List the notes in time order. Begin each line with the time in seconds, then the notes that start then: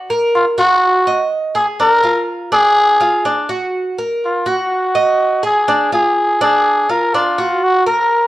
0.10 A#4
0.35 F4
0.58 F#4
1.07 D#5
1.55 G#4
1.80 D4 A#4
2.04 F4
2.52 D4 G#4
3.01 F4
3.25 D4
3.49 F#4
3.98 A#4
4.25 F4
4.46 F#4
4.95 D#5
5.43 G#4
5.68 D4
5.92 F4 G#4
6.41 D4 G#4
6.89 F4 A#4
7.14 D4 F4
7.38 F#4
7.64 F#4
7.86 A#4